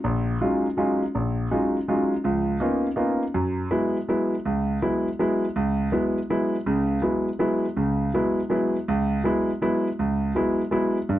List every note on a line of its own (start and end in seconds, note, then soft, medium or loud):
0.04 0.35 A#1 medium
0.41 0.65 F#3 medium
0.41 0.65 G#3 soft
0.41 0.65 C#4 soft
0.41 0.66 D#4 soft
0.41 0.66 F4 medium
0.77 1.02 F#3 medium
0.77 1.02 G#3 soft
0.77 1.02 C#4 soft
0.77 1.02 D#4 soft
0.77 1.02 F4 medium
1.15 1.46 A#1 medium
1.51 1.76 F#3 medium
1.51 1.76 G#3 soft
1.51 1.76 C#4 soft
1.51 1.76 D#4 medium
1.51 1.77 F4 medium
1.88 2.13 F#3 soft
1.88 2.13 G#3 soft
1.88 2.13 C#4 soft
1.88 2.13 D#4 soft
1.88 2.13 F4 medium
2.24 2.56 C#2 medium
2.24 2.56 F3 medium
2.60 2.86 A#3 soft
2.60 2.86 B3 soft
2.60 2.86 C#4 soft
2.60 2.86 D#4 soft
2.60 2.86 F4 medium
2.96 3.22 A#3 medium
2.96 3.22 B3 soft
2.96 3.22 C#4 soft
2.96 3.22 D#4 soft
2.96 3.23 F4 medium
3.34 3.66 F#2 medium
3.71 3.96 F#3 soft
3.71 3.96 G#3 soft
3.71 3.96 B3 soft
3.71 3.96 E4 medium
4.09 4.34 F#3 medium
4.09 4.33 G#3 soft
4.09 4.34 B3 medium
4.09 4.34 E4 medium
4.45 4.77 C#2 medium
4.82 5.07 F#3 medium
4.82 5.07 G#3 soft
4.82 5.07 B3 soft
4.82 5.07 E4 medium
5.19 5.44 F#3 medium
5.19 5.44 G#3 medium
5.19 5.44 B3 soft
5.19 5.45 E4 medium
5.56 5.88 C#2 medium
5.92 6.17 F#3 medium
5.92 6.18 G#3 soft
5.92 6.18 B3 medium
5.92 6.18 E4 medium
6.30 6.55 F#3 medium
6.30 6.55 G#3 soft
6.30 6.55 B3 soft
6.30 6.55 E4 medium
6.66 6.98 C#2 medium
6.66 6.98 C#3 medium
7.02 7.28 F#3 medium
7.02 7.28 G#3 soft
7.02 7.28 B3 soft
7.02 7.28 E4 medium
7.39 7.65 F#3 medium
7.39 7.65 G#3 medium
7.39 7.65 B3 soft
7.39 7.65 E4 medium
7.77 8.08 C#2 medium
7.77 8.09 C#3 medium
8.14 8.39 F#3 medium
8.14 8.39 G#3 soft
8.14 8.39 B3 medium
8.14 8.39 E4 medium
8.50 8.75 F#3 medium
8.50 8.75 G#3 soft
8.50 8.76 B3 medium
8.50 8.76 E4 medium
8.88 9.20 C#2 medium
9.24 9.49 F#3 medium
9.24 9.50 G#3 medium
9.24 9.50 B3 soft
9.24 9.50 E4 medium
9.62 9.87 F#3 medium
9.62 9.87 G#3 soft
9.62 9.87 B3 medium
9.62 9.87 E4 medium
9.99 10.31 C#2 medium
10.35 10.60 F#3 medium
10.35 10.61 G#3 medium
10.35 10.61 B3 soft
10.35 10.61 E4 medium
10.71 10.97 F#3 medium
10.71 10.97 G#3 medium
10.71 10.97 B3 soft
10.71 10.97 E4 medium
11.09 11.19 G2 medium